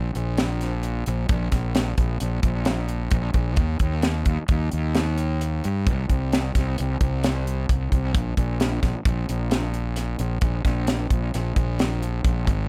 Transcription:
Already playing: fingered electric bass A#1
0.15 fingered electric bass A#1, closed hi-hat
0.37 snare, closed hi-hat
0.61 snare, closed hi-hat
0.83 closed hi-hat
1.06 fingered electric bass A#1, closed hi-hat
1.29 fingered electric bass A#1, kick, closed hi-hat
1.52 fingered electric bass A#1, kick, snare, closed hi-hat
1.75 snare, closed hi-hat
1.98 fingered electric bass A#1, kick, closed hi-hat
2.20 fingered electric bass A#1, closed hi-hat
2.43 fingered electric bass A#1, kick, closed hi-hat
2.65 snare, closed hi-hat
2.88 closed hi-hat
3.11 fingered electric bass A#1, kick, closed hi-hat
3.34 fingered electric bass A#1, kick, closed hi-hat
3.56 fingered electric bass D#2, kick, closed hi-hat
3.79 fingered electric bass D#2, kick, closed hi-hat
4.02 snare, closed hi-hat
4.25 fingered electric bass D#2, kick, closed hi-hat
4.48 fingered electric bass D#2, kick, closed hi-hat
4.71 fingered electric bass D#2, closed hi-hat
4.95 snare, closed hi-hat
5.18 closed hi-hat
5.41 closed hi-hat
5.64 fingered electric bass G2, closed hi-hat
5.87 fingered electric bass C2, kick, closed hi-hat
6.09 fingered electric bass C2, kick, closed hi-hat
6.32 snare, closed hi-hat
6.55 fingered electric bass C2, kick, snare, closed hi-hat
6.78 fingered electric bass C2, closed hi-hat
7.01 fingered electric bass C2, kick, closed hi-hat
7.24 snare, closed hi-hat
7.47 closed hi-hat
7.69 fingered electric bass C2, kick, closed hi-hat
7.92 fingered electric bass C2, kick, closed hi-hat
8.15 fingered electric bass A#1, kick, closed hi-hat
8.37 fingered electric bass A#1, kick, closed hi-hat
8.60 snare, closed hi-hat
8.83 fingered electric bass A#1, kick, snare, closed hi-hat
9.05 fingered electric bass A#1, kick, closed hi-hat
9.29 fingered electric bass A#1, closed hi-hat
9.51 snare, closed hi-hat
9.74 closed hi-hat
9.96 snare, closed hi-hat
10.19 fingered electric bass A#1, closed hi-hat
10.41 fingered electric bass A#1, kick, closed hi-hat
10.65 fingered electric bass A#1, kick, snare, closed hi-hat
10.87 snare, closed hi-hat
11.10 fingered electric bass A#1, kick, closed hi-hat
11.34 fingered electric bass A#1, snare, closed hi-hat
11.56 fingered electric bass A#1, kick, closed hi-hat
11.79 snare, closed hi-hat
12.03 closed hi-hat
12.24 fingered electric bass A#1, kick, closed hi-hat
12.47 fingered electric bass G#1, kick, closed hi-hat

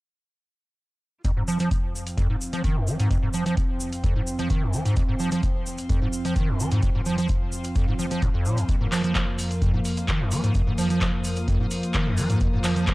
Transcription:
1.24 acid bass F2, analog synth pad F2 F3 C4, string section F4, kick, closed hi-hat, shaker
1.37 acid bass G#2, string section C5
1.48 acid bass F3, shaker
1.59 acid bass F3, closed hi-hat, shaker
1.71 kick, closed hi-hat, shaker
1.89 string section F5
1.95 shaker
2.07 closed hi-hat, shaker
2.17 acid bass F2, kick, closed hi-hat, shaker
2.30 acid bass G#2
2.41 shaker
2.53 acid bass F3, closed hi-hat, shaker
2.64 acid bass D#3, string section C6, kick, closed hi-hat, shaker
2.76 acid bass F2
2.87 acid bass F3, shaker
3.00 acid bass G#2, closed hi-hat, shaker
3.11 acid bass F2, kick, closed hi-hat, shaker
3.23 acid bass G#2
3.33 acid bass F3, shaker
3.46 acid bass F3, closed hi-hat, shaker
3.57 kick, closed hi-hat, shaker
3.80 shaker
3.92 closed hi-hat, shaker
4.04 acid bass F2, kick, closed hi-hat, shaker
4.16 acid bass G#2
4.27 shaker
4.39 acid bass F3, closed hi-hat, shaker
4.50 acid bass D#3, kick, closed hi-hat, shaker
4.62 acid bass F2
4.73 acid bass F3, shaker
4.85 acid bass G#2, closed hi-hat, shaker
4.96 acid bass F2, kick, closed hi-hat, shaker
5.09 acid bass G#2
5.19 acid bass F3, shaker
5.31 acid bass F3, closed hi-hat, shaker
5.43 kick, closed hi-hat, shaker
5.66 shaker
5.78 closed hi-hat, shaker
5.89 acid bass F2, kick, closed hi-hat, shaker
6.02 acid bass G#2
6.13 shaker
6.25 acid bass F3, closed hi-hat, shaker
6.36 acid bass D#3, kick, closed hi-hat, shaker
6.48 acid bass F2
6.60 acid bass F3, shaker
6.71 acid bass G#2, closed hi-hat, shaker
6.82 acid bass F2, kick, closed hi-hat, shaker
6.95 acid bass G#2
7.06 acid bass F3, shaker
7.18 acid bass F3, closed hi-hat, shaker
7.28 kick, closed hi-hat, shaker
7.52 shaker
7.64 closed hi-hat, shaker
7.75 acid bass F2, kick, closed hi-hat, shaker
7.88 acid bass G#2
7.99 acid bass F3, shaker
8.11 acid bass F3, closed hi-hat, shaker
8.22 acid bass F2, kick, closed hi-hat, shaker
8.34 acid bass F2
8.45 acid bass A#2, shaker
8.57 acid bass F2, closed hi-hat, shaker
8.69 acid bass F2, analog synth pad A#3, kick, closed hi-hat, shaker
8.81 acid bass G#2
8.92 acid bass F3, clap, open hi-hat, shaker
9.04 acid bass F3, closed hi-hat, shaker
9.15 acid bass F3, kick, clap, closed hi-hat, shaker
9.39 open hi-hat, shaker
9.51 closed hi-hat, shaker
9.62 acid bass F2, kick, closed hi-hat, shaker
9.74 acid bass G#2
9.85 open hi-hat, shaker
9.97 closed hi-hat, shaker
10.08 acid bass D#3, string section D#6, kick, clap, closed hi-hat, shaker
10.20 acid bass F2
10.31 acid bass F3, open hi-hat, shaker
10.43 acid bass G#2, closed hi-hat, shaker
10.54 acid bass F2, kick, closed hi-hat, shaker
10.67 acid bass G#2
10.78 acid bass F3, open hi-hat, shaker
10.90 acid bass F3, closed hi-hat, shaker
11.01 acid bass F3, kick, clap, closed hi-hat, shaker
11.24 open hi-hat, shaker
11.36 closed hi-hat, shaker
11.48 acid bass F2, kick, closed hi-hat, shaker
11.60 acid bass G#2
11.71 open hi-hat, shaker
11.83 closed hi-hat, shaker
11.93 acid bass D#3, kick, clap, closed hi-hat, shaker
12.07 acid bass F2
12.17 acid bass F3, open hi-hat, shaker
12.30 acid bass G#2, closed hi-hat, shaker
12.40 acid bass F2, kick, closed hi-hat, shaker
12.53 acid bass G#2
12.64 acid bass F3, clap, open hi-hat, shaker
12.76 acid bass F3, closed hi-hat, shaker
12.87 acid bass F3, kick, clap, closed hi-hat, shaker

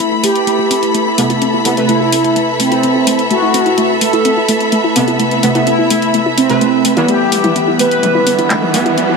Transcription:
Already playing: ambient pad A3 E4 B4, analog polysynth E4, string section A4 E5 B5
0.12 synth arpeggio sound E4
0.23 synth arpeggio sound A3, analog polysynth G4, open hi-hat
0.35 closed hi-hat
0.47 synth arpeggio sound A3, closed hi-hat
0.59 synth arpeggio sound E4
0.71 synth arpeggio sound C4, open hi-hat
0.83 synth arpeggio sound E4, closed hi-hat
0.94 synth arpeggio sound A3, closed hi-hat
1.18 synth stab C3 A3 B3, synth arpeggio sound A3, open hi-hat
1.30 synth arpeggio sound E4, closed hi-hat
1.42 synth arpeggio sound C4, closed hi-hat
1.54 synth arpeggio sound E4
1.65 synth stab C3 A3 B3, synth arpeggio sound A3, open hi-hat
1.77 synth stab C3 A3 B4, closed hi-hat
1.89 synth arpeggio sound A3, analog polysynth E4, closed hi-hat
2.01 synth arpeggio sound E4
2.12 synth arpeggio sound C4, open hi-hat
2.24 synth arpeggio sound E4, closed hi-hat
2.36 synth arpeggio sound A3, closed hi-hat
2.60 synth arpeggio sound A3, analog polysynth C4, open hi-hat
2.72 synth arpeggio sound E4, closed hi-hat
2.83 synth arpeggio sound C4, closed hi-hat
2.95 synth arpeggio sound E4
3.07 synth arpeggio sound A3, open hi-hat
3.19 closed hi-hat
3.31 synth arpeggio sound A3, analog polysynth F#4, closed hi-hat
3.42 synth arpeggio sound E4
3.54 synth arpeggio sound C4, open hi-hat
3.66 synth arpeggio sound E4, closed hi-hat
3.78 synth arpeggio sound A3, closed hi-hat
4.01 synth arpeggio sound A3, analog polysynth A4, open hi-hat
4.13 synth arpeggio sound E4, closed hi-hat
4.25 synth arpeggio sound C4, closed hi-hat
4.37 synth arpeggio sound E4
4.49 synth arpeggio sound A3, open hi-hat
4.60 closed hi-hat
4.72 synth arpeggio sound A3, closed hi-hat
4.84 synth arpeggio sound E4
4.96 synth stab C3 A3 B3, synth arpeggio sound C4, open hi-hat
5.08 synth arpeggio sound E4, closed hi-hat
5.19 synth arpeggio sound A3, closed hi-hat
5.31 closed hi-hat
5.43 synth stab C3 A3 B3, synth arpeggio sound A3, open hi-hat
5.55 synth stab C3 A3 B3, synth arpeggio sound E4, closed hi-hat
5.67 synth arpeggio sound C4, analog polysynth E4, closed hi-hat
5.79 synth arpeggio sound E4
5.90 synth arpeggio sound A3, open hi-hat
6.02 closed hi-hat
6.14 synth arpeggio sound A3, closed hi-hat
6.26 synth arpeggio sound E4
6.38 analog polysynth C4, synth arpeggio sound C4, open hi-hat
6.49 synth stab C3 A3 B4, synth arpeggio sound E4, closed hi-hat
6.61 synth arpeggio sound A3, closed hi-hat
6.85 synth arpeggio sound A3, open hi-hat
6.97 synth stab E3 G3 B3, synth arpeggio sound E4, closed hi-hat
7.08 ambient pad E3 G3 B3 F#5, synth arpeggio sound A3, string section B3, analog polysynth G4, closed hi-hat, riser
7.20 string section G3
7.32 synth arpeggio sound A3, open hi-hat
7.44 synth arpeggio sound E4, closed hi-hat, mid tom
7.56 synth arpeggio sound B3, closed hi-hat
7.68 synth arpeggio sound E4
7.79 synth arpeggio sound A3, analog polysynth B4, open hi-hat
7.91 closed hi-hat
8.03 synth arpeggio sound A3, closed hi-hat, mid tom
8.15 synth arpeggio sound E4
8.27 synth arpeggio sound B3, open hi-hat
8.39 synth arpeggio sound E4, closed hi-hat
8.50 synth arpeggio sound A3, clap, closed hi-hat
8.62 mid tom
8.74 synth stab E3 G3 B3, synth arpeggio sound A3, open hi-hat
8.86 synth arpeggio sound E4, closed hi-hat
8.97 synth arpeggio sound B3, closed hi-hat
9.09 synth arpeggio sound E4

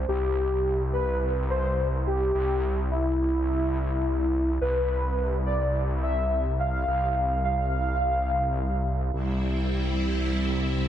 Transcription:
0.08 detuned saw bass C2, soft synth lead G4
0.93 soft synth lead B4
1.50 soft synth lead C5
2.07 soft synth lead G4
2.35 detuned saw bass C2
2.91 soft synth lead E4
4.61 detuned saw bass C2, soft synth lead B4
5.46 soft synth lead D5
6.03 soft synth lead E5
6.59 soft synth lead F5
6.87 detuned saw bass C2
7.44 soft synth lead F5
9.14 detuned saw bass C2, string machine G3 C4 E4

